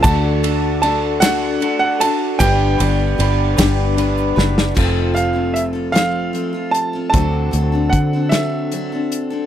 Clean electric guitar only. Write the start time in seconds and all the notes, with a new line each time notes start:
0.04 D3 D4 F#4 A4
0.43 D4 F#4 A4
0.82 D3 D4 F#4 A4
1.21 D4 F#4 A4
1.61 D3 D4 F#4 A4
1.99 D4 F#4 A4
2.39 G3 B3 D4 B4
2.78 B3 D4 B4
3.18 G3 B3 D4 B4
3.56 B3 B4
3.61 D4
3.96 G3 B3 D4 B4
4.36 B3 D4 B4
4.75 F3 A3 C4 F4 A4
7.12 D3 C4 F#4 A4